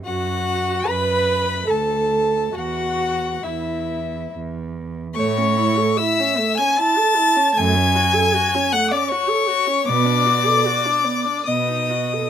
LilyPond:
<<
  \new Staff \with { instrumentName = "Violin" } { \time 3/4 \key a \major \tempo 4 = 74 fis''4 b''4 a''4 | fis''4 e''4 r4 | cis'''4 e'''8. gis'''16 a'''4 | gis'''4. fis'''16 d'''16 cis'''4 |
d'''2 dis'''4 | }
  \new Staff \with { instrumentName = "Violin" } { \time 3/4 \key a \major fis'4 b'4 a'4 | fis'4 e'4 r4 | cis''4 e''8. gis''16 a''4 | gis''4. fis''16 d''16 cis''4 |
d''2 dis''4 | }
  \new Staff \with { instrumentName = "Viola" } { \time 3/4 \key a \major fis'4 b'4 a'4 | fis'4 e'4 r4 | a16 cis'16 e'16 a'16 e'16 cis'16 a16 cis'16 e'16 a'16 e'16 cis'16 | a16 cis'16 fis'16 a'16 fis'16 cis'16 a16 cis'16 fis'16 a'16 fis'16 cis'16 |
b16 d'16 fis'16 a'16 fis'16 d'16 b16 d'16 b16 dis'16 fis'16 a'16 | }
  \new Staff \with { instrumentName = "Cello" } { \clef bass \time 3/4 \key a \major fis,4 fis,4 d,4 | e,4 e,4 e,4 | a,4 r2 | fis,4 r2 |
b,4 r4 b,4 | }
>>